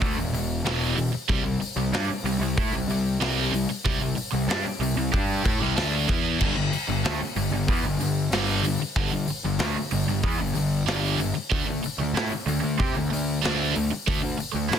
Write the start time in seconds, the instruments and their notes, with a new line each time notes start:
0.01 picked electric bass D2, distorted electric guitar D3 A3, kick, open hi-hat
0.16 picked electric bass E1, distorted electric guitar E2 B2
0.33 picked electric bass E1, distorted electric guitar E2 B2, open hi-hat
0.64 picked electric bass E1, distorted electric guitar E2 B2 E3, snare, open hi-hat
0.96 picked electric bass E1, distorted electric guitar E2 B2, open hi-hat
1.12 muted picked electric bass stroke, muted overdriven electric guitar stroke, muted distorted electric guitar stroke
1.29 picked electric bass C2, distorted electric guitar C3 G3, kick, open hi-hat
1.44 picked electric bass C2, distorted electric guitar C3 G3
1.60 muted picked electric bass stroke, muted overdriven electric guitar stroke, muted distorted electric guitar stroke, open hi-hat
1.76 picked electric bass C2, distorted electric guitar C3 G3
1.92 picked electric bass G2, distorted electric guitar G3 D4, snare, open hi-hat
2.09 muted picked electric bass stroke, muted distorted electric guitar stroke, muted overdriven electric guitar stroke
2.24 picked electric bass C2, distorted electric guitar C3 G3, open hi-hat
2.39 picked electric bass C2, distorted electric guitar C3 G3
2.57 picked electric bass A2, distorted electric guitar A3 E4, kick, open hi-hat
2.71 picked electric bass C2, distorted electric guitar C3 G3
2.88 picked electric bass C2, distorted electric guitar C3 G3, open hi-hat
3.20 picked electric bass C2, distorted electric guitar C3 G3 C4, snare, open hi-hat
3.52 picked electric bass C2, distorted electric guitar C3 G3, open hi-hat
3.69 muted picked electric bass stroke, muted distorted electric guitar stroke, muted overdriven electric guitar stroke
3.85 picked electric bass C2, distorted electric guitar C3 G3, kick, open hi-hat
4.01 picked electric bass C2, distorted electric guitar C3 G3
4.16 muted overdriven electric guitar stroke, muted picked electric bass stroke, muted distorted electric guitar stroke, open hi-hat
4.33 picked electric bass C2, distorted electric guitar C3 G3
4.48 picked electric bass G2, distorted electric guitar G3 D4, snare, open hi-hat
4.64 muted picked electric bass stroke, muted overdriven electric guitar stroke, muted distorted electric guitar stroke
4.79 picked electric bass C2, distorted electric guitar C3 G3, open hi-hat
4.96 picked electric bass C2, distorted electric guitar C3 G3
5.12 picked electric bass G2, distorted electric guitar G3 D4 G4, kick, open hi-hat
5.45 picked electric bass A2, distorted electric guitar A3 E4, kick, open hi-hat
5.61 picked electric bass C2, distorted electric guitar C3 G3
5.76 picked electric bass D2, distorted electric guitar D3 A3 D4, snare, open hi-hat
6.08 picked electric bass E2, distorted electric guitar E3 B3 E4, kick, open hi-hat
6.41 picked electric bass G1, distorted electric guitar G2 D3, kick, crash
6.56 picked electric bass G1, distorted electric guitar G2 D3
6.73 muted picked electric bass stroke, muted distorted electric guitar stroke, muted overdriven electric guitar stroke, open hi-hat
6.88 picked electric bass G1, distorted electric guitar G2 D3
7.05 picked electric bass D2, distorted electric guitar D3 A3, snare, open hi-hat
7.21 muted picked electric bass stroke, muted distorted electric guitar stroke, muted overdriven electric guitar stroke
7.36 picked electric bass G1, distorted electric guitar G2 D3, open hi-hat
7.51 picked electric bass G1, distorted electric guitar G2 D3
7.68 picked electric bass E2, distorted electric guitar E3 B3, kick, open hi-hat
7.83 picked electric bass G1, distorted electric guitar G2 D3
7.99 picked electric bass G1, distorted electric guitar G2 D3, open hi-hat
8.31 picked electric bass G1, distorted electric guitar G2 D3 G3, snare, open hi-hat
8.63 picked electric bass G1, distorted electric guitar G2 D3, open hi-hat
8.80 muted picked electric bass stroke, muted distorted electric guitar stroke, muted overdriven electric guitar stroke
8.96 picked electric bass G1, distorted electric guitar G2 D3, kick
9.12 picked electric bass G1, distorted electric guitar G2 D3
9.28 muted distorted electric guitar stroke, muted picked electric bass stroke, muted overdriven electric guitar stroke, open hi-hat
9.44 picked electric bass G1, distorted electric guitar G2 D3
9.59 picked electric bass D2, distorted electric guitar D3, snare, open hi-hat
9.63 distorted electric guitar A3
9.76 muted picked electric bass stroke, muted overdriven electric guitar stroke, muted distorted electric guitar stroke
9.91 picked electric bass G1, distorted electric guitar G2 D3, open hi-hat
10.07 picked electric bass G1, distorted electric guitar G2 D3
10.23 picked electric bass E2, distorted electric guitar E3 B3, kick, open hi-hat
10.39 picked electric bass G1, distorted electric guitar G2 D3
10.55 picked electric bass G1, distorted electric guitar G2 D3, open hi-hat
10.87 picked electric bass G1, distorted electric guitar G2 D3 G3, snare, open hi-hat
11.18 picked electric bass G1, distorted electric guitar G2 D3, open hi-hat
11.34 muted picked electric bass stroke, muted overdriven electric guitar stroke, muted distorted electric guitar stroke
11.51 picked electric bass D2, distorted electric guitar D3 A3, kick, open hi-hat
11.66 picked electric bass D2
11.70 distorted electric guitar D3 A3
11.82 muted picked electric bass stroke, muted overdriven electric guitar stroke, muted distorted electric guitar stroke, open hi-hat
11.98 picked electric bass D2, distorted electric guitar D3
12.02 distorted electric guitar A3
12.13 picked electric bass A2, distorted electric guitar A3, open hi-hat
12.17 distorted electric guitar E4, snare
12.29 muted picked electric bass stroke, muted overdriven electric guitar stroke
12.33 muted distorted electric guitar stroke
12.46 picked electric bass D2, distorted electric guitar D3 A3, open hi-hat
12.63 picked electric bass D2, distorted electric guitar D3 A3
12.79 picked electric bass C3, distorted electric guitar C4 G4, kick, open hi-hat
12.95 picked electric bass D2, distorted electric guitar D3 A3
13.12 picked electric bass D2, distorted electric guitar D3 A3, open hi-hat
13.44 picked electric bass D2, distorted electric guitar D3 A3 D4, snare, open hi-hat
13.75 picked electric bass D2, distorted electric guitar D3 A3, open hi-hat
13.91 muted overdriven electric guitar stroke, muted distorted electric guitar stroke, muted picked electric bass stroke
14.07 picked electric bass D2, distorted electric guitar D3 A3, kick, open hi-hat
14.24 picked electric bass D2, distorted electric guitar D3 A3
14.38 muted overdriven electric guitar stroke, muted picked electric bass stroke, muted distorted electric guitar stroke, open hi-hat
14.54 picked electric bass D2, distorted electric guitar D3 A3
14.71 picked electric bass A2, distorted electric guitar A3 E4, snare, open hi-hat